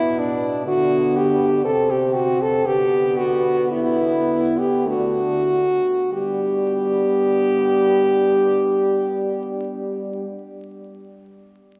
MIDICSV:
0, 0, Header, 1, 5, 480
1, 0, Start_track
1, 0, Key_signature, 1, "major"
1, 0, Tempo, 975610
1, 808, Tempo, 1010101
1, 1288, Time_signature, 3, 2, 24, 8
1, 1288, Tempo, 1060071
1, 1768, Tempo, 1151631
1, 2248, Tempo, 1252610
1, 3688, Tempo, 1200000
1, 4958, End_track
2, 0, Start_track
2, 0, Title_t, "French horn"
2, 0, Program_c, 0, 60
2, 0, Note_on_c, 0, 64, 119
2, 92, Note_on_c, 0, 62, 97
2, 99, Note_off_c, 0, 64, 0
2, 329, Note_off_c, 0, 62, 0
2, 331, Note_on_c, 0, 66, 109
2, 572, Note_on_c, 0, 67, 105
2, 579, Note_off_c, 0, 66, 0
2, 807, Note_off_c, 0, 67, 0
2, 810, Note_on_c, 0, 69, 108
2, 933, Note_on_c, 0, 67, 94
2, 941, Note_off_c, 0, 69, 0
2, 1044, Note_on_c, 0, 66, 105
2, 1051, Note_off_c, 0, 67, 0
2, 1176, Note_on_c, 0, 69, 111
2, 1183, Note_off_c, 0, 66, 0
2, 1291, Note_on_c, 0, 67, 117
2, 1298, Note_off_c, 0, 69, 0
2, 1522, Note_on_c, 0, 66, 106
2, 1528, Note_off_c, 0, 67, 0
2, 1766, Note_off_c, 0, 66, 0
2, 1769, Note_on_c, 0, 64, 102
2, 2130, Note_on_c, 0, 67, 97
2, 2136, Note_off_c, 0, 64, 0
2, 2253, Note_on_c, 0, 66, 100
2, 2258, Note_off_c, 0, 67, 0
2, 2730, Note_off_c, 0, 66, 0
2, 2733, Note_on_c, 0, 67, 112
2, 4342, Note_off_c, 0, 67, 0
2, 4958, End_track
3, 0, Start_track
3, 0, Title_t, "French horn"
3, 0, Program_c, 1, 60
3, 0, Note_on_c, 1, 59, 93
3, 184, Note_off_c, 1, 59, 0
3, 333, Note_on_c, 1, 62, 93
3, 792, Note_off_c, 1, 62, 0
3, 814, Note_on_c, 1, 60, 89
3, 1290, Note_on_c, 1, 59, 101
3, 1296, Note_off_c, 1, 60, 0
3, 2252, Note_on_c, 1, 62, 80
3, 2258, Note_off_c, 1, 59, 0
3, 2491, Note_off_c, 1, 62, 0
3, 2742, Note_on_c, 1, 62, 80
3, 4351, Note_off_c, 1, 62, 0
3, 4958, End_track
4, 0, Start_track
4, 0, Title_t, "French horn"
4, 0, Program_c, 2, 60
4, 0, Note_on_c, 2, 59, 74
4, 323, Note_off_c, 2, 59, 0
4, 326, Note_on_c, 2, 59, 86
4, 807, Note_on_c, 2, 60, 78
4, 815, Note_off_c, 2, 59, 0
4, 1286, Note_off_c, 2, 60, 0
4, 1289, Note_on_c, 2, 59, 74
4, 1760, Note_off_c, 2, 59, 0
4, 1766, Note_on_c, 2, 59, 81
4, 2247, Note_on_c, 2, 57, 73
4, 2253, Note_off_c, 2, 59, 0
4, 2566, Note_off_c, 2, 57, 0
4, 2734, Note_on_c, 2, 59, 73
4, 4343, Note_off_c, 2, 59, 0
4, 4958, End_track
5, 0, Start_track
5, 0, Title_t, "French horn"
5, 0, Program_c, 3, 60
5, 0, Note_on_c, 3, 47, 91
5, 325, Note_on_c, 3, 50, 86
5, 332, Note_off_c, 3, 47, 0
5, 806, Note_on_c, 3, 48, 85
5, 813, Note_off_c, 3, 50, 0
5, 1282, Note_off_c, 3, 48, 0
5, 1285, Note_on_c, 3, 50, 82
5, 2231, Note_off_c, 3, 50, 0
5, 2248, Note_on_c, 3, 50, 74
5, 2560, Note_off_c, 3, 50, 0
5, 2735, Note_on_c, 3, 55, 89
5, 4344, Note_off_c, 3, 55, 0
5, 4958, End_track
0, 0, End_of_file